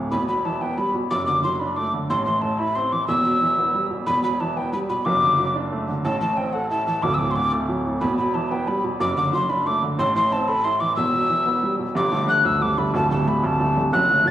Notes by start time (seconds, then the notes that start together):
Already playing: A2
0.12 E1 E2 B5
0.28 B2 B5
0.45 E3 A5
0.61 B3 G5
0.78 G3 B5
0.94 B2
1.11 F#1 F#2 D6
1.26 D3 D6
1.44 F#3 C6
1.55 C6
1.60 D4 B5
1.76 A3 D6
1.94 D3
2.10 A1 A2 C6
2.26 E3 C6
2.42 A3 A5
2.59 E4 B5
2.75 C4 C6
2.92 E3 D6
3.08 E1 E2 E6
3.25 B2
3.42 E3
3.58 B3
3.74 G3
3.90 B2
4.06 E1 E2 B5
4.23 B2 B5
4.40 E3 A5
4.57 B3 G5
4.73 G3 B5
4.89 B2 B5
5.05 F#1 F#2 D6
5.22 D3
5.39 F#3
5.56 D4
5.72 A3
5.88 D3
6.05 A1 A2 A5
6.21 E3 A5
6.37 C4 G5
6.53 A4 F#5
6.70 E4 A5
6.87 E3 A5
7.03 D1 D2 D6
7.14 E6
7.19 A2 D6
7.31 C6
7.36 D3 D6
7.52 A3
7.69 F#3
7.85 A2
8.01 E1 E2 B5
8.18 B2 B5
8.34 E3 A5
8.51 B3 G5
8.68 G3 B5
8.84 B2
9.00 F#1 F#2 D6
9.16 D3 D6
9.33 F#3 C6
9.49 D4 B5
9.65 A3 D6
9.82 D3
9.99 A1 A2 C6
10.16 E3 C6
10.32 C4 A5
10.48 A4 B5
10.64 E4 C6
10.80 E3 D6
10.96 E1 E2 E6
11.13 B2
11.29 E3
11.46 B3
11.63 G3
11.79 B2
11.95 G1 G2 D6
12.11 D3 G3 A3
12.27 D3 G3 A3 F#6
12.45 D2 E6
12.61 D3 G3 A3 D6
12.77 D3 G3 A3 B5
12.94 D1 D2 A5
13.10 D3 G3 A3 A5
13.26 D3 G3 A3 B5
13.43 D2 A5
13.60 D3 G3 A3
13.77 D3 G3 A3
13.93 F#1 F#2 F#6
14.09 D3 F#3 A3
14.25 D3 F#3 A3 A6